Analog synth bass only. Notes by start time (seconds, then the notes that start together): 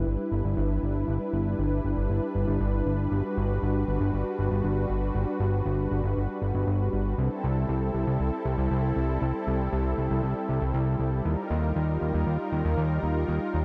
0.06 G1
0.32 G1
0.45 G1
0.57 G1
0.83 G1
1.08 G1
1.33 G1
1.59 G1
1.84 G1
1.97 G1
2.10 G1
2.35 G1
2.48 G1
2.60 G1
2.86 G1
3.12 G1
3.37 G1
3.62 G1
3.88 G1
4.00 G1
4.13 G1
4.39 G1
4.51 G1
4.64 G1
4.90 G1
5.15 G1
5.40 G1
5.66 G1
5.91 G1
6.04 G1
6.17 G1
6.42 G1
6.55 G1
6.67 G1
6.93 G1
7.18 C2
7.44 C2
7.69 C2
7.94 C2
8.07 C2
8.20 C2
8.45 C2
8.58 C2
8.71 C2
8.96 C2
9.22 C2
9.47 C2
9.72 C2
9.98 C2
10.11 C2
10.23 C2
10.49 C2
10.62 C2
10.74 C2
10.99 C2
11.25 D#2
11.50 D#2
11.76 D#2
12.02 D#2
12.14 D#2
12.27 D#2
12.52 D#2
12.65 D#2
12.77 D#2
13.03 D#2
13.28 D#2
13.54 D#2